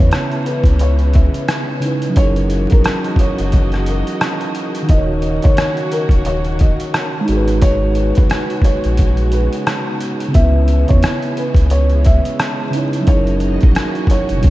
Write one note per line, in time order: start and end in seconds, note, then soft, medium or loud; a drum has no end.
0.00 0.12 E2 loud
0.00 1.75 C#3 medium
0.00 2.12 C#3 medium
0.00 2.13 E3 medium
0.00 4.85 G#3 medium
0.00 1.79 B3 medium
0.00 2.12 B3 medium
0.00 1.77 C#4 medium
0.00 2.13 C#4 medium
0.00 1.81 E4 medium
0.00 1.86 B4 medium
0.00 0.46 C#5 medium
0.00 kick loud
0.11 cross-stick loud
0.11 closed hi-hat medium
0.32 closed hi-hat soft
0.46 0.77 B4 medium
0.46 closed hi-hat medium
0.64 1.29 C#2 medium
0.64 kick medium
0.64 closed hi-hat soft
0.79 1.11 C#5 medium
0.79 closed hi-hat medium
0.99 closed hi-hat soft
1.13 1.45 E5 medium
1.13 kick medium
1.13 closed hi-hat medium
1.34 closed hi-hat medium
1.48 cross-stick loud
1.48 closed hi-hat medium
1.80 2.15 C#3 medium
1.80 2.12 C#4 medium
1.80 closed hi-hat medium
1.84 2.15 D#4 medium
1.84 2.18 E4 medium
1.84 2.19 B4 medium
2.02 closed hi-hat medium
2.09 4.82 F#3 medium
2.09 4.83 C#4 medium
2.16 2.67 F#1 loud
2.16 4.86 E3 medium
2.16 4.86 A#3 medium
2.16 4.85 D#4 medium
2.16 4.86 E4 medium
2.16 4.86 F#4 medium
2.16 2.67 C#5 loud
2.16 4.86 D#5 medium
2.16 kick loud
2.16 closed hi-hat medium
2.22 4.88 G#4 medium
2.22 4.89 A#4 medium
2.36 closed hi-hat soft
2.50 closed hi-hat medium
2.70 2.85 A#1 medium
2.70 3.16 A#4 medium
2.70 kick loud
2.70 closed hi-hat soft
2.84 cross-stick loud
2.84 closed hi-hat medium
3.04 closed hi-hat soft
3.16 3.83 C#5 medium
3.16 kick medium
3.16 closed hi-hat medium
3.38 4.03 F#1 medium
3.38 closed hi-hat soft
3.52 kick medium
3.52 closed hi-hat medium
3.72 cross-stick soft
3.72 closed hi-hat soft
3.86 4.18 A#4 medium
3.86 closed hi-hat medium
4.07 closed hi-hat medium
4.21 cross-stick loud
4.21 closed hi-hat medium
4.41 closed hi-hat soft
4.55 closed hi-hat medium
4.75 closed hi-hat medium
4.82 7.20 D#3 medium
4.82 7.22 D#4 medium
4.89 5.39 D#1 loud
4.89 13.03 C#3 medium
4.89 7.25 F#3 medium
4.89 7.25 A#3 medium
4.89 7.25 C#4 medium
4.89 4.97 E4 soft
4.89 7.25 F#4 medium
4.89 5.43 D#5 medium
4.89 kick loud
4.89 closed hi-hat medium
4.94 7.28 F#4 medium
4.94 7.26 A#4 medium
4.94 7.28 C#5 medium
5.22 closed hi-hat medium
5.42 5.58 F#1 medium
5.42 5.89 C#5 medium
5.42 kick loud
5.42 closed hi-hat soft
5.57 cross-stick loud
5.57 closed hi-hat medium
5.77 closed hi-hat soft
5.92 6.22 A#4 medium
5.92 closed hi-hat medium
6.09 6.74 D#1 medium
6.09 kick medium
6.09 closed hi-hat soft
6.25 6.57 C#5 medium
6.25 closed hi-hat medium
6.45 closed hi-hat soft
6.59 6.91 D#5 medium
6.59 kick medium
6.59 closed hi-hat medium
6.80 closed hi-hat medium
6.94 cross-stick loud
6.94 closed hi-hat medium
7.21 9.93 G#3 medium
7.21 9.95 D#4 medium
7.27 8.12 G#1 loud
7.27 10.31 F#3 medium
7.27 10.31 G#3 medium
7.27 13.03 B3 medium
7.27 10.31 F#4 medium
7.27 9.97 F#4 medium
7.27 closed hi-hat medium
7.33 9.99 G#4 medium
7.33 10.01 B4 medium
7.48 closed hi-hat soft
7.62 8.13 C#5 loud
7.62 kick loud
7.62 closed hi-hat medium
7.95 closed hi-hat medium
8.15 8.30 F#1 medium
8.15 8.61 B4 medium
8.15 kick loud
8.15 closed hi-hat soft
8.30 cross-stick loud
8.30 closed hi-hat medium
8.50 closed hi-hat soft
8.62 9.29 C#5 medium
8.62 kick medium
8.62 closed hi-hat medium
8.84 9.48 A#1 medium
8.84 closed hi-hat soft
8.97 kick medium
8.97 closed hi-hat medium
9.17 closed hi-hat soft
9.32 9.63 B4 medium
9.32 closed hi-hat medium
9.53 closed hi-hat medium
9.67 cross-stick loud
9.67 closed hi-hat medium
10.01 closed hi-hat medium
10.20 closed hi-hat medium
10.28 12.66 C#3 medium
10.28 12.68 C#4 medium
10.34 10.85 C#2 loud
10.34 13.05 E3 medium
10.34 14.40 G#3 medium
10.34 12.70 B3 medium
10.34 13.05 C#4 medium
10.34 10.85 E5 medium
10.34 kick loud
10.34 closed hi-hat medium
10.40 12.72 E4 medium
10.44 12.74 B4 medium
10.68 closed hi-hat medium
10.88 11.03 E2 loud
10.88 11.34 C#5 medium
10.88 kick loud
10.88 closed hi-hat soft
11.03 cross-stick loud
11.03 closed hi-hat medium
11.22 closed hi-hat soft
11.37 11.71 B4 medium
11.37 closed hi-hat medium
11.55 12.20 C#2 medium
11.55 kick medium
11.55 closed hi-hat soft
11.70 12.02 C#5 medium
11.70 closed hi-hat medium
11.90 closed hi-hat soft
12.05 12.36 E5 medium
12.05 kick medium
12.05 closed hi-hat medium
12.25 closed hi-hat medium
12.39 cross-stick loud
12.39 closed hi-hat medium
12.70 13.06 C#3 medium
12.70 13.03 C#4 medium
12.70 closed hi-hat medium
12.74 13.06 D#4 medium
12.74 13.09 E4 medium
12.74 13.10 C#5 medium
12.93 closed hi-hat soft
13.01 14.37 F#3 medium
13.01 14.39 C#4 medium
13.07 13.58 F#1 loud
13.07 14.42 E3 medium
13.07 14.42 A#3 medium
13.07 14.41 D#4 medium
13.07 14.42 E4 medium
13.07 14.50 F#4 medium
13.07 13.58 C#5 loud
13.07 14.42 D#5 medium
13.07 kick loud
13.07 closed hi-hat medium
13.13 14.44 G#4 medium
13.13 14.46 A#4 medium
13.27 closed hi-hat soft
13.40 closed hi-hat medium
13.61 13.76 A#1 medium
13.61 14.07 A#4 medium
13.61 kick loud
13.61 closed hi-hat soft
13.75 cross-stick loud
13.75 closed hi-hat medium
13.95 closed hi-hat soft
14.07 14.50 C#5 medium
14.07 kick medium
14.07 closed hi-hat medium
14.29 14.43 F#1 medium
14.29 closed hi-hat soft
14.37 14.50 B2 medium
14.41 14.50 B1 loud
14.41 14.50 D#3 medium
14.41 14.50 F#3 medium
14.41 14.50 B3 medium
14.41 14.50 C#4 medium
14.41 kick medium
14.41 closed hi-hat medium